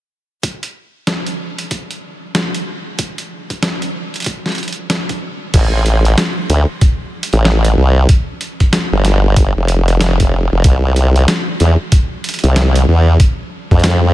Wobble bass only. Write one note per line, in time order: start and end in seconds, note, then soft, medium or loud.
5.54 6.16 A1 loud
6.49 6.66 D2 loud
7.33 7.75 A1 medium
7.77 8.07 C2 loud
8.92 9.53 G1 loud
9.56 10.49 F1 medium
10.52 10.63 F1 loud
10.64 11.26 C2 loud
11.60 11.77 E2 medium
12.44 12.86 C2 medium
12.88 13.18 E2 loud
13.71 14.13 F2 medium